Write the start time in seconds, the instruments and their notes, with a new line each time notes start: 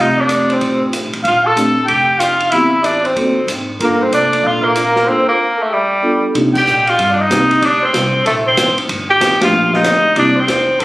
Already playing: upright bass F1, vibraphone A3 C4 F4 G4
0.00 tenor saxophone D#4, trumpet D#5
0.18 tenor saxophone D4, trumpet D5
0.29 hi-hat pedal, ride
0.50 tenor saxophone C4, trumpet C5, ride
0.61 upright bass A1, kick, ride
0.93 hi-hat pedal, ride
1.13 upright bass A1, ride
1.23 upright bass A#1, trumpet F5, kick, ride
1.28 tenor saxophone F4
1.45 tenor saxophone A4, trumpet A5
1.56 vibraphone A3 C4 D4 G4, hi-hat pedal, ride
1.85 upright bass F1, tenor saxophone G4, trumpet G5, kick, ride
2.19 tenor saxophone F4, trumpet F5, hi-hat pedal, ride
2.40 ride
2.50 upright bass A1, vibraphone B3 C4 E4 G4, tenor saxophone E4, trumpet E5, kick, ride
2.83 tenor saxophone D4, trumpet D5, hi-hat pedal, ride
3.04 tenor saxophone C4, trumpet C5, ride
3.16 upright bass D2, vibraphone A#3 C4 F#4 A4, kick, ride
3.47 upright bass G#1, hi-hat pedal, ride
3.80 upright bass G1, vibraphone A#3 D4 F4 A4, trumpet A#4, kick, ride
3.85 tenor saxophone A#3
4.01 tenor saxophone C4, trumpet C5
4.11 upright bass F1, tenor saxophone D4, trumpet D5, hi-hat pedal, ride
4.33 ride
4.43 upright bass A#1, tenor saxophone F4, trumpet F5, kick
4.63 tenor saxophone A#3, trumpet A#4
4.75 hi-hat pedal, ride
4.96 snare
5.06 vibraphone A#3 D4 F4 A4, tenor saxophone C4, trumpet C5
5.27 tenor saxophone A#3, trumpet A#4
5.58 trumpet A4
5.63 tenor saxophone A3
5.70 tenor saxophone G3, trumpet G4
6.02 vibraphone B3 D4 F4 A4
6.34 upright bass C3, vibraphone A#3 C4 D4 D#4 G4, kick, ride
6.54 trumpet G5, kick, crash
6.58 tenor saxophone G4
6.67 upright bass A#2, hi-hat pedal
6.86 tenor saxophone F4, trumpet F5, ride
6.99 upright bass G2, kick, ride
7.10 tenor saxophone D4, trumpet D5
7.19 tenor saxophone D#4, trumpet D#5
7.30 upright bass C2, vibraphone A#3 C4 D#4 G4, kick, snare, hi-hat pedal, ride
7.51 ride
7.62 upright bass D2, tenor saxophone D4, trumpet D5, kick, ride
7.82 tenor saxophone C4, trumpet C5, muted upright bass stroke
7.94 upright bass C2, kick, snare, hi-hat pedal, ride
8.25 upright bass A#1, tenor saxophone A3, trumpet A4, kick, ride
8.47 tenor saxophone C4, trumpet C5
8.57 upright bass A1, kick, snare, hi-hat pedal, ride
8.77 muted upright bass stroke, ride
8.89 upright bass G1, kick, ride
9.10 tenor saxophone G4, trumpet G5
9.20 upright bass A1, kick, snare, hi-hat pedal, ride
9.41 vibraphone F3 A3 A#3 D4 G4, tenor saxophone F4, trumpet F5, snare, ride
9.52 upright bass A#1
9.74 tenor saxophone D#4, trumpet D#5, snare
9.84 upright bass D2, kick, snare, hi-hat pedal, ride
10.16 upright bass C2, vibraphone A#3 C4 D4 E4 G4, tenor saxophone D4, trumpet D5, kick, ride
10.36 tenor saxophone C4, trumpet C5
10.48 upright bass E2, kick, snare, hi-hat pedal, ride
10.80 upright bass A2, trumpet A4, kick, ride